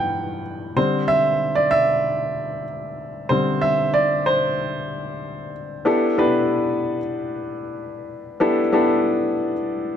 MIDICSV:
0, 0, Header, 1, 2, 480
1, 0, Start_track
1, 0, Tempo, 636267
1, 582, Time_signature, 4, 2, 24, 8
1, 7521, End_track
2, 0, Start_track
2, 0, Title_t, "Grand piano"
2, 0, Program_c, 0, 0
2, 0, Control_c, 0, 64, 127
2, 0, Note_on_c, 0, 43, 47
2, 0, Note_on_c, 0, 52, 42
2, 0, Note_on_c, 0, 59, 53
2, 0, Note_on_c, 0, 78, 76
2, 0, Note_on_c, 0, 79, 67
2, 0, Note_on_c, 0, 81, 78
2, 0, Note_on_c, 0, 83, 93
2, 312, Note_off_c, 0, 79, 0
2, 576, Note_on_c, 0, 50, 47
2, 578, Note_on_c, 0, 72, 87
2, 579, Note_on_c, 0, 55, 45
2, 583, Note_on_c, 0, 60, 51
2, 590, Control_c, 0, 64, 0
2, 591, Note_off_c, 0, 59, 0
2, 592, Note_off_c, 0, 78, 0
2, 593, Note_off_c, 0, 83, 0
2, 594, Note_off_c, 0, 43, 0
2, 596, Note_off_c, 0, 52, 0
2, 597, Note_off_c, 0, 81, 0
2, 726, Control_c, 0, 64, 127
2, 803, Note_off_c, 0, 72, 0
2, 814, Note_on_c, 0, 76, 91
2, 1173, Note_on_c, 0, 74, 81
2, 1189, Note_off_c, 0, 76, 0
2, 1269, Note_off_c, 0, 50, 0
2, 1270, Note_off_c, 0, 55, 0
2, 1272, Note_off_c, 0, 60, 0
2, 1289, Note_on_c, 0, 76, 94
2, 1301, Note_off_c, 0, 74, 0
2, 1985, Note_off_c, 0, 76, 0
2, 2483, Note_on_c, 0, 72, 85
2, 2492, Note_on_c, 0, 50, 48
2, 2496, Note_on_c, 0, 55, 44
2, 2502, Note_on_c, 0, 60, 52
2, 2715, Note_off_c, 0, 72, 0
2, 2727, Note_on_c, 0, 76, 87
2, 2969, Note_on_c, 0, 74, 83
2, 2982, Note_off_c, 0, 76, 0
2, 3024, Note_off_c, 0, 74, 0
2, 3187, Note_off_c, 0, 50, 0
2, 3189, Note_off_c, 0, 55, 0
2, 3192, Note_off_c, 0, 60, 0
2, 3214, Note_on_c, 0, 72, 86
2, 4149, Note_off_c, 0, 72, 0
2, 4414, Note_on_c, 0, 59, 77
2, 4417, Note_on_c, 0, 62, 69
2, 4420, Note_on_c, 0, 64, 72
2, 4423, Note_on_c, 0, 67, 68
2, 4428, Note_on_c, 0, 69, 85
2, 4431, Control_c, 0, 64, 0
2, 4568, Note_off_c, 0, 59, 0
2, 4570, Note_off_c, 0, 62, 0
2, 4571, Note_off_c, 0, 64, 0
2, 4573, Note_off_c, 0, 67, 0
2, 4575, Note_off_c, 0, 69, 0
2, 4580, Control_c, 0, 64, 127
2, 4659, Note_on_c, 0, 59, 72
2, 4662, Note_on_c, 0, 64, 67
2, 4663, Note_on_c, 0, 62, 71
2, 4669, Note_on_c, 0, 67, 64
2, 4669, Note_on_c, 0, 71, 84
2, 5260, Note_off_c, 0, 59, 0
2, 5261, Note_off_c, 0, 64, 0
2, 5262, Note_off_c, 0, 62, 0
2, 5265, Note_off_c, 0, 67, 0
2, 5265, Note_off_c, 0, 71, 0
2, 6337, Note_on_c, 0, 59, 77
2, 6341, Note_on_c, 0, 62, 70
2, 6342, Note_on_c, 0, 64, 73
2, 6346, Note_on_c, 0, 67, 70
2, 6346, Note_on_c, 0, 69, 82
2, 6490, Note_off_c, 0, 59, 0
2, 6492, Note_off_c, 0, 62, 0
2, 6493, Note_off_c, 0, 64, 0
2, 6494, Note_off_c, 0, 67, 0
2, 6494, Note_off_c, 0, 69, 0
2, 6581, Note_on_c, 0, 59, 76
2, 6584, Note_on_c, 0, 64, 69
2, 6585, Note_on_c, 0, 62, 76
2, 6589, Note_on_c, 0, 67, 69
2, 6592, Note_on_c, 0, 69, 83
2, 7181, Note_off_c, 0, 59, 0
2, 7183, Note_off_c, 0, 62, 0
2, 7183, Note_off_c, 0, 64, 0
2, 7185, Note_off_c, 0, 67, 0
2, 7186, Note_off_c, 0, 69, 0
2, 7521, End_track
0, 0, End_of_file